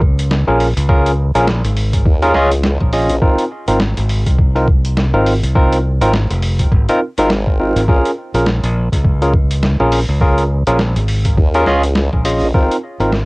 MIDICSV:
0, 0, Header, 1, 6, 480
1, 0, Start_track
1, 0, Key_signature, -5, "minor"
1, 0, Tempo, 582524
1, 734, Time_signature, 4, 2, 24, 8
1, 10919, End_track
2, 0, Start_track
2, 0, Title_t, "Tine electric piano"
2, 0, Program_c, 0, 4
2, 392, Note_on_c, 0, 65, 76
2, 392, Note_on_c, 0, 68, 77
2, 392, Note_on_c, 0, 70, 90
2, 393, Note_on_c, 0, 61, 84
2, 547, Note_off_c, 0, 65, 0
2, 547, Note_off_c, 0, 68, 0
2, 547, Note_off_c, 0, 70, 0
2, 548, Note_off_c, 0, 61, 0
2, 732, Note_on_c, 0, 61, 98
2, 732, Note_on_c, 0, 68, 89
2, 732, Note_on_c, 0, 70, 109
2, 733, Note_on_c, 0, 65, 91
2, 911, Note_off_c, 0, 68, 0
2, 911, Note_off_c, 0, 70, 0
2, 912, Note_off_c, 0, 61, 0
2, 912, Note_off_c, 0, 65, 0
2, 1113, Note_on_c, 0, 61, 95
2, 1113, Note_on_c, 0, 65, 83
2, 1113, Note_on_c, 0, 68, 82
2, 1113, Note_on_c, 0, 70, 100
2, 1200, Note_off_c, 0, 61, 0
2, 1200, Note_off_c, 0, 65, 0
2, 1200, Note_off_c, 0, 68, 0
2, 1200, Note_off_c, 0, 70, 0
2, 1832, Note_on_c, 0, 65, 92
2, 1833, Note_on_c, 0, 61, 101
2, 1833, Note_on_c, 0, 68, 91
2, 1833, Note_on_c, 0, 70, 111
2, 1919, Note_off_c, 0, 61, 0
2, 1919, Note_off_c, 0, 65, 0
2, 1919, Note_off_c, 0, 68, 0
2, 1919, Note_off_c, 0, 70, 0
2, 1932, Note_on_c, 0, 61, 98
2, 1932, Note_on_c, 0, 65, 89
2, 1932, Note_on_c, 0, 68, 90
2, 1932, Note_on_c, 0, 75, 107
2, 2054, Note_off_c, 0, 61, 0
2, 2054, Note_off_c, 0, 65, 0
2, 2054, Note_off_c, 0, 68, 0
2, 2054, Note_off_c, 0, 75, 0
2, 2414, Note_on_c, 0, 61, 87
2, 2414, Note_on_c, 0, 75, 94
2, 2415, Note_on_c, 0, 65, 76
2, 2415, Note_on_c, 0, 68, 77
2, 2592, Note_off_c, 0, 61, 0
2, 2592, Note_off_c, 0, 75, 0
2, 2593, Note_off_c, 0, 65, 0
2, 2593, Note_off_c, 0, 68, 0
2, 2652, Note_on_c, 0, 70, 93
2, 2653, Note_on_c, 0, 63, 82
2, 2653, Note_on_c, 0, 65, 79
2, 2654, Note_on_c, 0, 60, 87
2, 2832, Note_off_c, 0, 60, 0
2, 2832, Note_off_c, 0, 63, 0
2, 2832, Note_off_c, 0, 65, 0
2, 2832, Note_off_c, 0, 70, 0
2, 3033, Note_on_c, 0, 60, 75
2, 3033, Note_on_c, 0, 63, 70
2, 3033, Note_on_c, 0, 65, 70
2, 3033, Note_on_c, 0, 70, 85
2, 3120, Note_off_c, 0, 63, 0
2, 3120, Note_off_c, 0, 70, 0
2, 3121, Note_off_c, 0, 60, 0
2, 3121, Note_off_c, 0, 65, 0
2, 3754, Note_on_c, 0, 60, 79
2, 3754, Note_on_c, 0, 63, 73
2, 3754, Note_on_c, 0, 65, 72
2, 3755, Note_on_c, 0, 70, 86
2, 3841, Note_off_c, 0, 60, 0
2, 3841, Note_off_c, 0, 63, 0
2, 3841, Note_off_c, 0, 65, 0
2, 3841, Note_off_c, 0, 70, 0
2, 4233, Note_on_c, 0, 63, 78
2, 4234, Note_on_c, 0, 60, 86
2, 4234, Note_on_c, 0, 65, 78
2, 4234, Note_on_c, 0, 70, 93
2, 4388, Note_off_c, 0, 60, 0
2, 4388, Note_off_c, 0, 63, 0
2, 4388, Note_off_c, 0, 65, 0
2, 4388, Note_off_c, 0, 70, 0
2, 4574, Note_on_c, 0, 63, 88
2, 4575, Note_on_c, 0, 60, 99
2, 4575, Note_on_c, 0, 65, 89
2, 4575, Note_on_c, 0, 70, 107
2, 4753, Note_off_c, 0, 60, 0
2, 4753, Note_off_c, 0, 63, 0
2, 4753, Note_off_c, 0, 65, 0
2, 4753, Note_off_c, 0, 70, 0
2, 4955, Note_on_c, 0, 63, 84
2, 4956, Note_on_c, 0, 60, 92
2, 4956, Note_on_c, 0, 65, 85
2, 4956, Note_on_c, 0, 70, 102
2, 5041, Note_off_c, 0, 63, 0
2, 5042, Note_off_c, 0, 60, 0
2, 5042, Note_off_c, 0, 65, 0
2, 5042, Note_off_c, 0, 70, 0
2, 5678, Note_on_c, 0, 60, 98
2, 5678, Note_on_c, 0, 65, 90
2, 5679, Note_on_c, 0, 63, 90
2, 5679, Note_on_c, 0, 70, 109
2, 5762, Note_off_c, 0, 60, 0
2, 5762, Note_off_c, 0, 63, 0
2, 5762, Note_off_c, 0, 65, 0
2, 5762, Note_off_c, 0, 70, 0
2, 5920, Note_on_c, 0, 60, 95
2, 5921, Note_on_c, 0, 63, 86
2, 5921, Note_on_c, 0, 65, 88
2, 5921, Note_on_c, 0, 70, 107
2, 6004, Note_off_c, 0, 60, 0
2, 6004, Note_off_c, 0, 63, 0
2, 6004, Note_off_c, 0, 65, 0
2, 6004, Note_off_c, 0, 70, 0
2, 6259, Note_on_c, 0, 60, 75
2, 6259, Note_on_c, 0, 63, 70
2, 6259, Note_on_c, 0, 65, 71
2, 6259, Note_on_c, 0, 70, 83
2, 6435, Note_off_c, 0, 60, 0
2, 6435, Note_off_c, 0, 63, 0
2, 6435, Note_off_c, 0, 65, 0
2, 6435, Note_off_c, 0, 70, 0
2, 6498, Note_on_c, 0, 61, 85
2, 6499, Note_on_c, 0, 65, 80
2, 6499, Note_on_c, 0, 68, 78
2, 6499, Note_on_c, 0, 70, 93
2, 6674, Note_off_c, 0, 61, 0
2, 6675, Note_off_c, 0, 65, 0
2, 6675, Note_off_c, 0, 68, 0
2, 6675, Note_off_c, 0, 70, 0
2, 6878, Note_on_c, 0, 61, 73
2, 6878, Note_on_c, 0, 70, 83
2, 6879, Note_on_c, 0, 65, 70
2, 6879, Note_on_c, 0, 68, 70
2, 6963, Note_off_c, 0, 61, 0
2, 6963, Note_off_c, 0, 65, 0
2, 6963, Note_off_c, 0, 68, 0
2, 6963, Note_off_c, 0, 70, 0
2, 7596, Note_on_c, 0, 61, 80
2, 7596, Note_on_c, 0, 65, 72
2, 7596, Note_on_c, 0, 70, 85
2, 7597, Note_on_c, 0, 68, 72
2, 7682, Note_off_c, 0, 61, 0
2, 7682, Note_off_c, 0, 65, 0
2, 7682, Note_off_c, 0, 68, 0
2, 7682, Note_off_c, 0, 70, 0
2, 8076, Note_on_c, 0, 61, 82
2, 8076, Note_on_c, 0, 65, 77
2, 8076, Note_on_c, 0, 68, 79
2, 8077, Note_on_c, 0, 70, 93
2, 8229, Note_off_c, 0, 61, 0
2, 8229, Note_off_c, 0, 65, 0
2, 8229, Note_off_c, 0, 68, 0
2, 8230, Note_off_c, 0, 70, 0
2, 8414, Note_on_c, 0, 65, 90
2, 8415, Note_on_c, 0, 61, 94
2, 8415, Note_on_c, 0, 68, 90
2, 8415, Note_on_c, 0, 70, 106
2, 8592, Note_off_c, 0, 65, 0
2, 8593, Note_off_c, 0, 61, 0
2, 8593, Note_off_c, 0, 68, 0
2, 8593, Note_off_c, 0, 70, 0
2, 8794, Note_on_c, 0, 61, 92
2, 8794, Note_on_c, 0, 65, 84
2, 8794, Note_on_c, 0, 70, 100
2, 8795, Note_on_c, 0, 68, 85
2, 8881, Note_off_c, 0, 61, 0
2, 8881, Note_off_c, 0, 65, 0
2, 8881, Note_off_c, 0, 68, 0
2, 8881, Note_off_c, 0, 70, 0
2, 9514, Note_on_c, 0, 61, 102
2, 9514, Note_on_c, 0, 65, 91
2, 9514, Note_on_c, 0, 68, 94
2, 9515, Note_on_c, 0, 70, 109
2, 9599, Note_off_c, 0, 61, 0
2, 9599, Note_off_c, 0, 65, 0
2, 9600, Note_off_c, 0, 68, 0
2, 9600, Note_off_c, 0, 70, 0
2, 9616, Note_on_c, 0, 65, 89
2, 9616, Note_on_c, 0, 68, 88
2, 9616, Note_on_c, 0, 75, 110
2, 9617, Note_on_c, 0, 61, 98
2, 9736, Note_off_c, 0, 61, 0
2, 9736, Note_off_c, 0, 65, 0
2, 9736, Note_off_c, 0, 68, 0
2, 9736, Note_off_c, 0, 75, 0
2, 10095, Note_on_c, 0, 68, 77
2, 10095, Note_on_c, 0, 75, 93
2, 10096, Note_on_c, 0, 61, 85
2, 10096, Note_on_c, 0, 65, 79
2, 10273, Note_off_c, 0, 61, 0
2, 10273, Note_off_c, 0, 65, 0
2, 10273, Note_off_c, 0, 68, 0
2, 10273, Note_off_c, 0, 75, 0
2, 10335, Note_on_c, 0, 60, 86
2, 10335, Note_on_c, 0, 63, 77
2, 10335, Note_on_c, 0, 70, 93
2, 10336, Note_on_c, 0, 65, 78
2, 10513, Note_off_c, 0, 60, 0
2, 10513, Note_off_c, 0, 63, 0
2, 10513, Note_off_c, 0, 65, 0
2, 10513, Note_off_c, 0, 70, 0
2, 10714, Note_on_c, 0, 60, 75
2, 10714, Note_on_c, 0, 63, 70
2, 10714, Note_on_c, 0, 65, 71
2, 10714, Note_on_c, 0, 70, 84
2, 10801, Note_off_c, 0, 60, 0
2, 10801, Note_off_c, 0, 63, 0
2, 10801, Note_off_c, 0, 65, 0
2, 10801, Note_off_c, 0, 70, 0
2, 10919, End_track
3, 0, Start_track
3, 0, Title_t, "Fingered electric bass"
3, 0, Program_c, 1, 33
3, 0, Note_on_c, 1, 37, 98
3, 371, Note_off_c, 1, 37, 0
3, 395, Note_on_c, 1, 34, 97
3, 612, Note_off_c, 1, 34, 0
3, 631, Note_on_c, 1, 37, 96
3, 1090, Note_off_c, 1, 37, 0
3, 1114, Note_on_c, 1, 34, 94
3, 1332, Note_off_c, 1, 34, 0
3, 1354, Note_on_c, 1, 32, 94
3, 1678, Note_off_c, 1, 32, 0
3, 2312, Note_on_c, 1, 34, 98
3, 2531, Note_off_c, 1, 34, 0
3, 3031, Note_on_c, 1, 32, 95
3, 3250, Note_off_c, 1, 32, 0
3, 3274, Note_on_c, 1, 32, 99
3, 3492, Note_off_c, 1, 32, 0
3, 3515, Note_on_c, 1, 36, 98
3, 4212, Note_off_c, 1, 36, 0
3, 4233, Note_on_c, 1, 32, 98
3, 4451, Note_off_c, 1, 32, 0
3, 4474, Note_on_c, 1, 36, 102
3, 4932, Note_off_c, 1, 36, 0
3, 4952, Note_on_c, 1, 32, 93
3, 5171, Note_off_c, 1, 32, 0
3, 5194, Note_on_c, 1, 29, 98
3, 5519, Note_off_c, 1, 29, 0
3, 5535, Note_on_c, 1, 32, 96
3, 5652, Note_off_c, 1, 32, 0
3, 6393, Note_on_c, 1, 32, 100
3, 6478, Note_off_c, 1, 32, 0
3, 6873, Note_on_c, 1, 34, 94
3, 7091, Note_off_c, 1, 34, 0
3, 7114, Note_on_c, 1, 34, 100
3, 7332, Note_off_c, 1, 34, 0
3, 7354, Note_on_c, 1, 37, 94
3, 8052, Note_off_c, 1, 37, 0
3, 8074, Note_on_c, 1, 34, 98
3, 8292, Note_off_c, 1, 34, 0
3, 8311, Note_on_c, 1, 37, 99
3, 8770, Note_off_c, 1, 37, 0
3, 8793, Note_on_c, 1, 34, 95
3, 9011, Note_off_c, 1, 34, 0
3, 9032, Note_on_c, 1, 32, 98
3, 9358, Note_off_c, 1, 32, 0
3, 9993, Note_on_c, 1, 34, 98
3, 10211, Note_off_c, 1, 34, 0
3, 10709, Note_on_c, 1, 32, 94
3, 10919, Note_off_c, 1, 32, 0
3, 10919, End_track
4, 0, Start_track
4, 0, Title_t, "Wobble bass"
4, 0, Program_c, 2, 39
4, 1693, Note_on_c, 2, 39, 95
4, 1918, Note_off_c, 2, 39, 0
4, 1935, Note_on_c, 2, 37, 98
4, 2292, Note_off_c, 2, 37, 0
4, 2552, Note_on_c, 2, 34, 100
4, 2638, Note_off_c, 2, 34, 0
4, 2652, Note_on_c, 2, 32, 104
4, 2771, Note_off_c, 2, 32, 0
4, 5914, Note_on_c, 2, 32, 100
4, 6372, Note_off_c, 2, 32, 0
4, 6496, Note_on_c, 2, 34, 103
4, 6612, Note_off_c, 2, 34, 0
4, 9372, Note_on_c, 2, 39, 95
4, 9597, Note_off_c, 2, 39, 0
4, 9612, Note_on_c, 2, 37, 96
4, 9971, Note_off_c, 2, 37, 0
4, 10234, Note_on_c, 2, 34, 101
4, 10319, Note_off_c, 2, 34, 0
4, 10334, Note_on_c, 2, 32, 103
4, 10452, Note_off_c, 2, 32, 0
4, 10919, End_track
5, 0, Start_track
5, 0, Title_t, "Impact"
5, 0, Program_c, 3, 103
5, 0, Note_on_c, 3, 60, 76
5, 735, Note_off_c, 3, 60, 0
5, 10919, End_track
6, 0, Start_track
6, 0, Title_t, "Drums"
6, 13, Note_on_c, 9, 36, 109
6, 95, Note_off_c, 9, 36, 0
6, 157, Note_on_c, 9, 42, 72
6, 239, Note_off_c, 9, 42, 0
6, 256, Note_on_c, 9, 38, 120
6, 338, Note_off_c, 9, 38, 0
6, 496, Note_on_c, 9, 46, 65
6, 578, Note_off_c, 9, 46, 0
6, 635, Note_on_c, 9, 42, 69
6, 718, Note_off_c, 9, 42, 0
6, 733, Note_on_c, 9, 36, 123
6, 816, Note_off_c, 9, 36, 0
6, 875, Note_on_c, 9, 42, 59
6, 957, Note_off_c, 9, 42, 0
6, 1113, Note_on_c, 9, 42, 70
6, 1196, Note_off_c, 9, 42, 0
6, 1214, Note_on_c, 9, 38, 123
6, 1297, Note_off_c, 9, 38, 0
6, 1355, Note_on_c, 9, 37, 38
6, 1355, Note_on_c, 9, 42, 56
6, 1438, Note_off_c, 9, 37, 0
6, 1438, Note_off_c, 9, 42, 0
6, 1455, Note_on_c, 9, 46, 63
6, 1537, Note_off_c, 9, 46, 0
6, 1592, Note_on_c, 9, 42, 66
6, 1593, Note_on_c, 9, 36, 64
6, 1675, Note_off_c, 9, 36, 0
6, 1675, Note_off_c, 9, 42, 0
6, 1693, Note_on_c, 9, 36, 110
6, 1776, Note_off_c, 9, 36, 0
6, 1832, Note_on_c, 9, 42, 38
6, 1914, Note_off_c, 9, 42, 0
6, 1930, Note_on_c, 9, 38, 64
6, 2013, Note_off_c, 9, 38, 0
6, 2072, Note_on_c, 9, 37, 40
6, 2072, Note_on_c, 9, 42, 69
6, 2155, Note_off_c, 9, 37, 0
6, 2155, Note_off_c, 9, 42, 0
6, 2171, Note_on_c, 9, 38, 121
6, 2254, Note_off_c, 9, 38, 0
6, 2312, Note_on_c, 9, 36, 66
6, 2395, Note_off_c, 9, 36, 0
6, 2413, Note_on_c, 9, 46, 62
6, 2495, Note_off_c, 9, 46, 0
6, 2551, Note_on_c, 9, 42, 68
6, 2633, Note_off_c, 9, 42, 0
6, 2653, Note_on_c, 9, 36, 127
6, 2735, Note_off_c, 9, 36, 0
6, 2790, Note_on_c, 9, 42, 55
6, 2872, Note_off_c, 9, 42, 0
6, 3031, Note_on_c, 9, 42, 71
6, 3114, Note_off_c, 9, 42, 0
6, 3131, Note_on_c, 9, 38, 122
6, 3214, Note_off_c, 9, 38, 0
6, 3273, Note_on_c, 9, 42, 54
6, 3355, Note_off_c, 9, 42, 0
6, 3373, Note_on_c, 9, 46, 61
6, 3456, Note_off_c, 9, 46, 0
6, 3513, Note_on_c, 9, 36, 65
6, 3514, Note_on_c, 9, 42, 67
6, 3596, Note_off_c, 9, 36, 0
6, 3597, Note_off_c, 9, 42, 0
6, 3614, Note_on_c, 9, 36, 114
6, 3696, Note_off_c, 9, 36, 0
6, 3756, Note_on_c, 9, 42, 37
6, 3838, Note_off_c, 9, 42, 0
6, 3854, Note_on_c, 9, 36, 115
6, 3936, Note_off_c, 9, 36, 0
6, 3994, Note_on_c, 9, 42, 71
6, 4076, Note_off_c, 9, 42, 0
6, 4095, Note_on_c, 9, 38, 120
6, 4177, Note_off_c, 9, 38, 0
6, 4336, Note_on_c, 9, 46, 61
6, 4419, Note_off_c, 9, 46, 0
6, 4477, Note_on_c, 9, 42, 66
6, 4559, Note_off_c, 9, 42, 0
6, 4574, Note_on_c, 9, 36, 122
6, 4657, Note_off_c, 9, 36, 0
6, 4716, Note_on_c, 9, 42, 56
6, 4798, Note_off_c, 9, 42, 0
6, 4955, Note_on_c, 9, 42, 67
6, 5038, Note_off_c, 9, 42, 0
6, 5055, Note_on_c, 9, 38, 119
6, 5138, Note_off_c, 9, 38, 0
6, 5195, Note_on_c, 9, 37, 34
6, 5195, Note_on_c, 9, 42, 53
6, 5277, Note_off_c, 9, 37, 0
6, 5277, Note_off_c, 9, 42, 0
6, 5293, Note_on_c, 9, 46, 62
6, 5375, Note_off_c, 9, 46, 0
6, 5431, Note_on_c, 9, 42, 65
6, 5434, Note_on_c, 9, 36, 64
6, 5514, Note_off_c, 9, 42, 0
6, 5517, Note_off_c, 9, 36, 0
6, 5534, Note_on_c, 9, 36, 108
6, 5617, Note_off_c, 9, 36, 0
6, 5674, Note_on_c, 9, 42, 37
6, 5756, Note_off_c, 9, 42, 0
6, 5914, Note_on_c, 9, 37, 38
6, 5914, Note_on_c, 9, 42, 68
6, 5996, Note_off_c, 9, 37, 0
6, 5996, Note_off_c, 9, 42, 0
6, 6014, Note_on_c, 9, 38, 123
6, 6096, Note_off_c, 9, 38, 0
6, 6154, Note_on_c, 9, 36, 66
6, 6236, Note_off_c, 9, 36, 0
6, 6397, Note_on_c, 9, 42, 65
6, 6480, Note_off_c, 9, 42, 0
6, 6494, Note_on_c, 9, 36, 122
6, 6577, Note_off_c, 9, 36, 0
6, 6636, Note_on_c, 9, 42, 52
6, 6719, Note_off_c, 9, 42, 0
6, 6877, Note_on_c, 9, 42, 64
6, 6959, Note_off_c, 9, 42, 0
6, 6974, Note_on_c, 9, 38, 119
6, 7057, Note_off_c, 9, 38, 0
6, 7117, Note_on_c, 9, 42, 50
6, 7199, Note_off_c, 9, 42, 0
6, 7353, Note_on_c, 9, 36, 64
6, 7358, Note_on_c, 9, 42, 65
6, 7436, Note_off_c, 9, 36, 0
6, 7440, Note_off_c, 9, 42, 0
6, 7454, Note_on_c, 9, 36, 110
6, 7536, Note_off_c, 9, 36, 0
6, 7597, Note_on_c, 9, 42, 35
6, 7680, Note_off_c, 9, 42, 0
6, 7693, Note_on_c, 9, 36, 112
6, 7776, Note_off_c, 9, 36, 0
6, 7835, Note_on_c, 9, 42, 66
6, 7918, Note_off_c, 9, 42, 0
6, 7935, Note_on_c, 9, 38, 118
6, 8017, Note_off_c, 9, 38, 0
6, 8174, Note_on_c, 9, 46, 66
6, 8257, Note_off_c, 9, 46, 0
6, 8412, Note_on_c, 9, 36, 113
6, 8495, Note_off_c, 9, 36, 0
6, 8553, Note_on_c, 9, 42, 51
6, 8635, Note_off_c, 9, 42, 0
6, 8791, Note_on_c, 9, 42, 65
6, 8873, Note_off_c, 9, 42, 0
6, 8892, Note_on_c, 9, 38, 112
6, 8974, Note_off_c, 9, 38, 0
6, 9033, Note_on_c, 9, 37, 36
6, 9033, Note_on_c, 9, 42, 53
6, 9115, Note_off_c, 9, 37, 0
6, 9115, Note_off_c, 9, 42, 0
6, 9131, Note_on_c, 9, 46, 66
6, 9214, Note_off_c, 9, 46, 0
6, 9269, Note_on_c, 9, 42, 62
6, 9272, Note_on_c, 9, 36, 61
6, 9351, Note_off_c, 9, 42, 0
6, 9355, Note_off_c, 9, 36, 0
6, 9373, Note_on_c, 9, 36, 104
6, 9455, Note_off_c, 9, 36, 0
6, 9511, Note_on_c, 9, 42, 36
6, 9594, Note_off_c, 9, 42, 0
6, 9611, Note_on_c, 9, 38, 61
6, 9693, Note_off_c, 9, 38, 0
6, 9751, Note_on_c, 9, 37, 39
6, 9751, Note_on_c, 9, 42, 65
6, 9833, Note_off_c, 9, 37, 0
6, 9833, Note_off_c, 9, 42, 0
6, 9850, Note_on_c, 9, 38, 112
6, 9933, Note_off_c, 9, 38, 0
6, 9993, Note_on_c, 9, 36, 59
6, 10076, Note_off_c, 9, 36, 0
6, 10093, Note_on_c, 9, 46, 67
6, 10175, Note_off_c, 9, 46, 0
6, 10334, Note_on_c, 9, 36, 113
6, 10417, Note_off_c, 9, 36, 0
6, 10476, Note_on_c, 9, 42, 53
6, 10558, Note_off_c, 9, 42, 0
6, 10714, Note_on_c, 9, 42, 64
6, 10796, Note_off_c, 9, 42, 0
6, 10813, Note_on_c, 9, 38, 109
6, 10896, Note_off_c, 9, 38, 0
6, 10919, End_track
0, 0, End_of_file